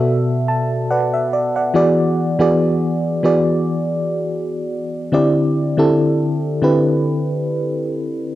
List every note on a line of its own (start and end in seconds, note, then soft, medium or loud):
0.00 1.76 B2 medium
0.00 1.74 B3 medium
0.00 1.75 F#4 medium
0.00 1.76 A4 medium
0.00 0.91 D5 loud
0.00 1.14 E5 loud
0.48 0.87 A5 medium
0.91 1.12 B4 medium
0.91 1.12 D5 medium
0.91 1.29 F#5 medium
1.14 1.53 E5 medium
1.33 1.55 D5 medium
1.56 1.75 D5 medium
1.56 1.96 F#5 medium
1.74 2.25 E3 medium
1.74 2.25 B3 medium
1.74 2.25 F#4 medium
1.74 2.26 G#4 medium
1.74 2.26 D5 loud
2.39 3.05 E3 medium
2.39 3.05 B3 medium
2.39 3.05 F#4 medium
2.39 3.05 G#4 medium
2.39 3.06 D5 loud
3.23 4.57 E3 medium
3.23 4.57 B3 medium
3.23 4.57 F#4 medium
3.23 4.58 G#4 medium
3.23 4.58 D5 medium
5.12 5.63 D3 medium
5.12 5.63 C4 medium
5.12 5.64 E4 medium
5.12 5.64 G4 medium
5.12 5.64 D5 medium
5.77 6.43 D3 medium
5.77 6.43 C4 medium
5.77 6.44 E4 medium
5.77 6.44 G4 medium
5.77 6.44 A4 loud
6.62 7.95 D3 medium
6.62 7.95 C4 medium
6.62 7.96 E4 medium
6.62 7.96 G4 medium
6.62 7.96 B4 medium